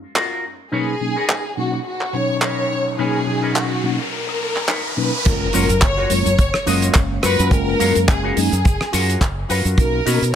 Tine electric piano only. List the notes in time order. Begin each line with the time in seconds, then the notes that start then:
0.72 B2 F#3 A#3 C#4 D#4
1.00 B2 F#3 A#3 C#4 D#4
1.57 B2 F#3 A#3 C#4 D#4
2.13 B2 F#3 C#4 D#4
2.98 B2 F#3 A#3 C#4 D#4
3.26 B2 F#3 C#4 D#4
3.83 B2 F#3 A#3 C#4 D#4
4.96 B2 F#3 A#3 C#4 D#4
5.25 G#3 A#3 C#4 F4
5.53 G#3 A#3 C#4 F4
6.10 G#3 A#3 C#4 F4
6.66 G#3 A#3 C#4 F5
7.51 G#3 A#3 C#4 F4
7.80 G#3 A#3 C#4 F5
8.36 G#3 A#3 C#4 D#4
9.78 A#3 C#4 D#4 F#4
10.06 A#3 C#4 D#4 F#4